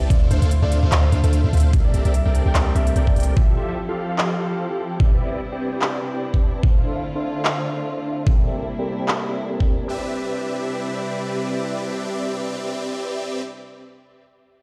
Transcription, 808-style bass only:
Already playing: C2
0.10 D2
0.31 D2
0.42 D2
0.62 D2
0.83 D2
0.92 D2
1.12 D2
1.24 D2
1.44 D2
1.53 D2
1.73 C2
1.94 C2
2.05 C2
2.25 C2
2.46 C2
2.55 C2
2.75 C2
2.96 C2
3.16 C2

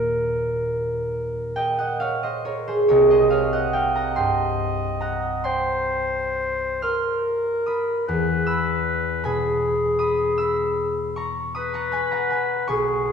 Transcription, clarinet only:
Already playing: A#4
2.90 D#5
5.46 C5
6.83 A#4
8.08 B4
9.25 G#4
11.57 B4
12.69 G#4

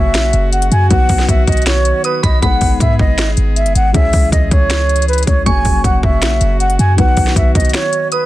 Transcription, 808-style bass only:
Already playing: F#1
0.15 A#1
0.34 F#1
0.72 F#2
0.91 B1
1.10 B1
1.28 B1
1.47 B1
2.23 B1
2.42 G#1
2.61 G#1
2.80 G#2
2.99 G#1
3.37 G#1
3.66 F#1
3.75 G#1
3.94 C#2
4.13 C#2
4.32 C#2
4.51 C#2
5.27 C#2
5.46 F#1
5.65 F#1
5.84 F#1
6.03 F#1
6.22 A#1
6.41 F#1
6.79 F#2
6.98 B1
7.17 B1
7.36 B1
7.55 B1

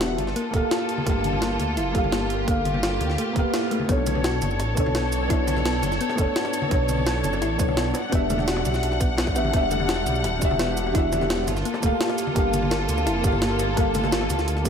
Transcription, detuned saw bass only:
Already playing: E1
0.18 G1
0.54 D1
1.07 G1
1.60 D2
1.77 F1
1.95 G1
2.48 G1
3.01 D2
3.36 D1
3.89 B1
4.42 F#1
4.60 A1
4.77 B1
5.30 B1
5.83 F#1
6.18 F#1
6.71 B1
7.24 F#1
7.42 A1
7.59 B1
8.12 E1
8.65 B1
8.83 B1
9.36 A1
9.54 E1
10.06 B1
10.24 D1
10.42 E1
10.95 E1
11.48 G1
11.83 D1
12.36 G1
12.89 D2
13.06 F1
13.24 G1
13.77 G1
14.30 D2
14.65 G1

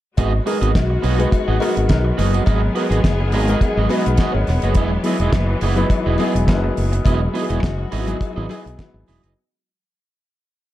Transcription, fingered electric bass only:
0.18 G#1
0.62 G#1
0.76 B1
1.04 B1
1.48 G#1
1.77 G#1
1.90 B1
2.19 F#1
2.47 G#1
2.91 G#1
3.05 F#1
3.34 G#1
3.77 G#1
4.07 B1
4.34 G#1
4.48 E1
4.63 F#1
4.76 E1
5.20 E1
5.33 F#1
5.62 F#1
6.06 E1
6.35 E1
6.48 F#1
6.78 F#1
7.06 E1
7.50 E1
7.63 F#1
7.93 G#1
8.37 G#1
8.66 B1
8.94 G#1
9.09 E1
9.24 F#1

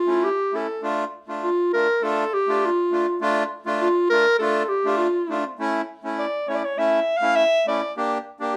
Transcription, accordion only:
0.07 A3 C#4 E4
0.53 A3 C#4 E4
0.82 A3 D4 F4
1.28 A3 D4 F4
1.74 A3 D4 F4
2.02 A3 D4 F4
2.48 A3 D4 F4
2.91 A3 D4 F4
3.21 A3 D4 F4
3.66 A3 D4 F4
4.11 A3 D4 F4
4.40 A3 D4 F4
4.85 A3 D4 F4
5.29 A3 D4 F4
5.59 A3 C#4 E4
6.04 A3 C#4 E4
6.48 A3 C#4 E4
6.78 A3 C#4 E4
7.21 A3 C#4 E4
7.66 A3 C#4 E4
7.97 A#3 D4 G4
8.40 A#3 D4 G4

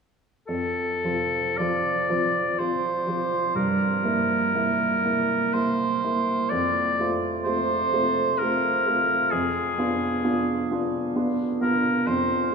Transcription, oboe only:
0.47 A4
1.57 D5
2.59 C5
3.56 A#4
5.53 C5
6.49 D5
7.43 C5
8.38 A#4
9.31 G#4
11.62 A#4
12.07 C5

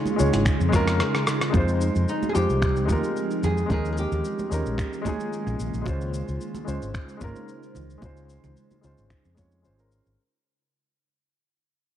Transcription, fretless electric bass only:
0.20 C#2
0.33 G#1
0.60 F2
1.54 F2
1.96 F2
2.36 F2
2.49 C2
2.89 D#2
3.43 F2
3.70 D#2
4.12 D#2
4.51 D#2
4.66 A#1
5.47 A#1
5.59 A#1
5.73 A#1
5.86 C#2
6.28 C#2
6.68 C#2
6.82 G#1
7.21 G#1
7.75 C#2
8.02 C#2
8.44 C#2
8.84 C#2
8.98 G#1
9.25 F2
9.65 G#1
10.06 G#1

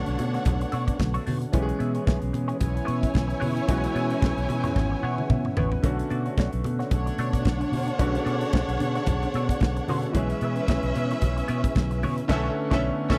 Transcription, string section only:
Already playing: D4 C#5 F#5
2.61 E4 C#5 G#5
6.91 D4 C#5 F#5
10.14 C#4 B4 E5
12.30 C#4 A4 E5
12.73 C#4 A4 E5
13.10 C#4 A4 E5

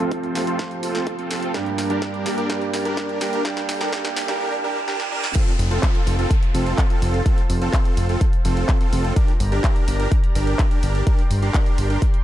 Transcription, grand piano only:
0.00 F3 A3 C4 F4
0.34 F3 A3 C4 F4
1.54 G2 G3 A#3 D4 G4
1.90 G2 G3 A#3 D4 G4
2.25 G2 G3 A#3 D4 G4
2.49 G2 G3 A#3 D4 G4
2.85 G2 G3 A#3 D4 G4
3.20 G2 G3 A#3 D4 G4
3.44 G2 G3 A#3 D4 G4
3.80 G2 G3 A#3 D4 G4
3.92 G2 G3 A#3 D4 G4
4.28 G2 G3 A#3 D4 G4

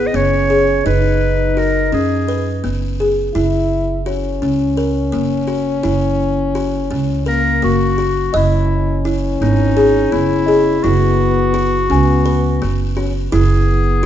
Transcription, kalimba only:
0.14 B3
0.50 G#4
0.86 D#4
1.57 F#4
1.92 C#4
2.28 B4
2.64 B3
3.00 G#4
3.35 E4
4.06 F#4
4.42 C#4
4.77 A#4
5.12 A#3
5.47 F#4
5.83 E4
6.55 F#4
6.91 C#4
7.26 A#4
7.62 A#3
7.98 F#4
8.34 D#5
9.05 E4
9.42 B3
9.77 G#4
10.12 B3
10.48 G#4
10.84 E4
11.54 F#4
11.90 C#4
12.26 B4
12.62 B3
12.97 F#4
13.32 E4

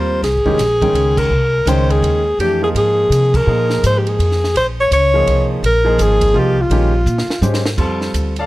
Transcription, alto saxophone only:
Already playing: C5
0.24 G#4
1.18 A#4
1.69 C5
1.91 G#4
2.40 G4
2.64 G#4
2.77 G#4
3.36 A#4
3.86 C5
3.99 G4
4.09 G#4
4.57 C5
4.80 C#5
4.93 C#5
5.66 A#4
6.02 G#4
6.39 G4
6.61 F4

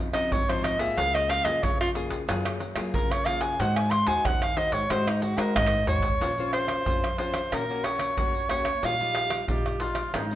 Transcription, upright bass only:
0.13 C#3
0.32 C#2
0.98 C#2
1.45 F2
1.63 F2
2.10 C#2
2.28 F#2
2.76 F#3
2.94 F#2
3.59 G#2
4.07 D#2
4.25 D#2
4.72 G#2
4.90 G#2
5.37 G#3
5.55 G#2
6.21 A#1
6.87 F2
7.53 A#1
8.19 C#2
8.83 A#1
9.49 A#1
10.15 G#1

